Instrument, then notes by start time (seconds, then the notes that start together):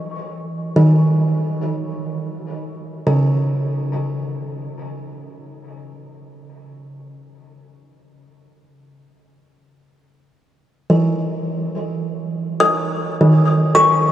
kalimba
Already playing: E3 D#5 C#6
0.76 D#3
3.07 C#3
10.90 E3
12.60 D#6
13.21 D#3
13.75 C#6